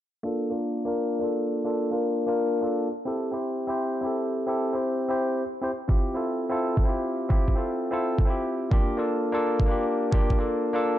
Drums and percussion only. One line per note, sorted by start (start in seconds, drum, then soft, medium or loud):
5.89 kick loud
6.77 kick loud
7.30 kick loud
7.48 kick medium
8.19 kick medium
8.71 kick loud
9.60 kick medium
10.12 kick loud
10.30 kick medium